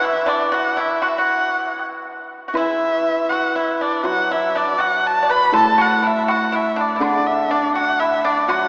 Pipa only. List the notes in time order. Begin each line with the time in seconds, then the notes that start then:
0.01 E4
0.26 D4
0.52 F#4
0.77 E4
1.02 F#4
1.18 F#4
2.48 F#4
2.57 E4
3.32 F#4
3.56 E4
3.81 D4
4.05 F#4
4.31 E4
4.55 D4
4.78 F#4
5.23 D5
5.29 B4
5.53 A4
5.78 F#4
6.03 E4
6.28 F#4
6.52 E4
6.76 D4
6.96 E4
7.01 D4
7.51 D4
7.75 F#4
8.00 E4
8.25 D4
8.49 F#4